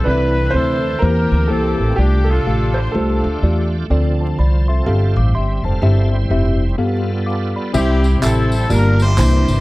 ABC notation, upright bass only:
X:1
M:4/4
L:1/8
Q:"Swing" 1/4=125
K:C
V:1 name="Upright bass" clef=bass
C,,2 D,,2 E,, D,, C,, A,,, | C,,2 A,,,2 C,, D,, E,,2 | D,,2 C,,2 G,,, A,,, G,,, F,,, | G,,,2 F,,,2 z4 |
C,,2 A,,,2 G,,,2 C,, G,,, |]